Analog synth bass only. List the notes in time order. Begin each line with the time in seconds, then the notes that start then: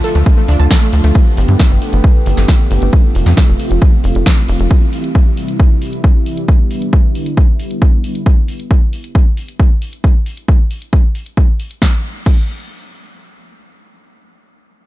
0.15 D2
0.48 D2
0.60 D2
0.93 D2
1.04 D2
1.37 G1
1.48 G2
1.71 G1
1.93 G1
2.26 G1
2.37 G1
2.71 G1
2.82 G1
3.15 F1
3.26 F2
3.48 F1
3.71 F1
4.04 F1
4.15 F1
4.48 F1
4.60 F1